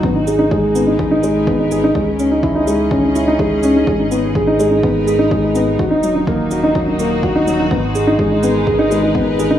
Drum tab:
SH |-x-x-x-x|-x-x-x-x|-x-x-x-x|-x-x-x-x|
BD |o-o-o-o-|o-o-o-o-|o-o-o-o-|o-o-o-o-|

SH |-x-x-x-x|
BD |o-o-o-o-|